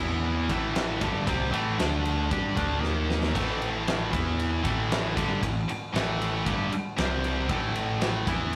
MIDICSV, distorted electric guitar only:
0, 0, Header, 1, 3, 480
1, 0, Start_track
1, 0, Tempo, 518135
1, 1177, Time_signature, 4, 2, 24, 8
1, 7926, End_track
2, 0, Start_track
2, 0, Title_t, "Distorted electric guitar"
2, 0, Program_c, 0, 30
2, 0, Note_on_c, 0, 52, 87
2, 0, Note_on_c, 0, 59, 96
2, 0, Note_on_c, 0, 64, 105
2, 443, Note_off_c, 0, 52, 0
2, 445, Note_off_c, 0, 59, 0
2, 447, Note_off_c, 0, 64, 0
2, 452, Note_on_c, 0, 45, 98
2, 460, Note_on_c, 0, 52, 104
2, 460, Note_on_c, 0, 57, 106
2, 927, Note_off_c, 0, 45, 0
2, 931, Note_off_c, 0, 52, 0
2, 931, Note_off_c, 0, 57, 0
2, 933, Note_on_c, 0, 43, 92
2, 935, Note_on_c, 0, 50, 97
2, 943, Note_on_c, 0, 55, 95
2, 1165, Note_off_c, 0, 50, 0
2, 1167, Note_off_c, 0, 43, 0
2, 1167, Note_off_c, 0, 55, 0
2, 1168, Note_on_c, 0, 48, 87
2, 1178, Note_on_c, 0, 55, 98
2, 1178, Note_on_c, 0, 60, 88
2, 1400, Note_off_c, 0, 48, 0
2, 1401, Note_off_c, 0, 55, 0
2, 1404, Note_on_c, 0, 45, 87
2, 1405, Note_on_c, 0, 52, 90
2, 1409, Note_off_c, 0, 60, 0
2, 1413, Note_on_c, 0, 57, 85
2, 1642, Note_off_c, 0, 45, 0
2, 1643, Note_off_c, 0, 52, 0
2, 1644, Note_off_c, 0, 57, 0
2, 1646, Note_on_c, 0, 50, 94
2, 1655, Note_on_c, 0, 57, 95
2, 1659, Note_on_c, 0, 62, 97
2, 2124, Note_off_c, 0, 50, 0
2, 2126, Note_off_c, 0, 62, 0
2, 2127, Note_off_c, 0, 57, 0
2, 2131, Note_on_c, 0, 55, 88
2, 2137, Note_on_c, 0, 62, 85
2, 2145, Note_on_c, 0, 67, 89
2, 2362, Note_on_c, 0, 50, 93
2, 2365, Note_off_c, 0, 55, 0
2, 2368, Note_off_c, 0, 62, 0
2, 2369, Note_on_c, 0, 57, 107
2, 2374, Note_off_c, 0, 67, 0
2, 2379, Note_on_c, 0, 62, 98
2, 2594, Note_off_c, 0, 50, 0
2, 2594, Note_on_c, 0, 51, 89
2, 2600, Note_off_c, 0, 57, 0
2, 2600, Note_on_c, 0, 58, 95
2, 2610, Note_off_c, 0, 62, 0
2, 2610, Note_on_c, 0, 63, 101
2, 3079, Note_off_c, 0, 51, 0
2, 3081, Note_off_c, 0, 58, 0
2, 3086, Note_off_c, 0, 63, 0
2, 3086, Note_on_c, 0, 45, 95
2, 3093, Note_on_c, 0, 52, 83
2, 3097, Note_on_c, 0, 57, 102
2, 3797, Note_off_c, 0, 52, 0
2, 3804, Note_off_c, 0, 45, 0
2, 3808, Note_on_c, 0, 52, 84
2, 3810, Note_off_c, 0, 57, 0
2, 3821, Note_on_c, 0, 59, 92
2, 3825, Note_on_c, 0, 64, 88
2, 4282, Note_off_c, 0, 52, 0
2, 4286, Note_on_c, 0, 45, 96
2, 4292, Note_off_c, 0, 59, 0
2, 4293, Note_off_c, 0, 64, 0
2, 4297, Note_on_c, 0, 57, 97
2, 4299, Note_on_c, 0, 52, 89
2, 4765, Note_off_c, 0, 45, 0
2, 4771, Note_off_c, 0, 52, 0
2, 4771, Note_off_c, 0, 57, 0
2, 4775, Note_on_c, 0, 43, 88
2, 4780, Note_on_c, 0, 50, 93
2, 4786, Note_on_c, 0, 55, 100
2, 5009, Note_off_c, 0, 43, 0
2, 5012, Note_off_c, 0, 50, 0
2, 5015, Note_off_c, 0, 55, 0
2, 5022, Note_on_c, 0, 45, 62
2, 5025, Note_on_c, 0, 52, 70
2, 5212, Note_off_c, 0, 45, 0
2, 5214, Note_off_c, 0, 52, 0
2, 5493, Note_on_c, 0, 45, 87
2, 5503, Note_on_c, 0, 52, 97
2, 5504, Note_on_c, 0, 57, 109
2, 5968, Note_off_c, 0, 45, 0
2, 5973, Note_off_c, 0, 52, 0
2, 5974, Note_off_c, 0, 57, 0
2, 5978, Note_on_c, 0, 43, 95
2, 5982, Note_on_c, 0, 50, 93
2, 5988, Note_on_c, 0, 55, 108
2, 6211, Note_off_c, 0, 43, 0
2, 6213, Note_off_c, 0, 50, 0
2, 6216, Note_off_c, 0, 55, 0
2, 6458, Note_on_c, 0, 48, 90
2, 6467, Note_on_c, 0, 55, 93
2, 6472, Note_on_c, 0, 60, 115
2, 6929, Note_off_c, 0, 48, 0
2, 6933, Note_on_c, 0, 45, 93
2, 6935, Note_off_c, 0, 55, 0
2, 6937, Note_off_c, 0, 60, 0
2, 6938, Note_on_c, 0, 52, 94
2, 6944, Note_on_c, 0, 57, 98
2, 7646, Note_off_c, 0, 52, 0
2, 7647, Note_off_c, 0, 45, 0
2, 7652, Note_off_c, 0, 57, 0
2, 7657, Note_on_c, 0, 52, 89
2, 7666, Note_on_c, 0, 59, 93
2, 7668, Note_on_c, 0, 64, 96
2, 7926, Note_off_c, 0, 52, 0
2, 7926, Note_off_c, 0, 59, 0
2, 7926, Note_off_c, 0, 64, 0
2, 7926, End_track
3, 0, Start_track
3, 0, Title_t, "Muted distorted electric guitar strokes"
3, 5266, Note_on_c, 9, 29, 55
3, 5359, Note_off_c, 9, 29, 0
3, 6217, Note_on_c, 9, 29, 61
3, 6310, Note_off_c, 9, 29, 0
3, 7926, End_track
0, 0, End_of_file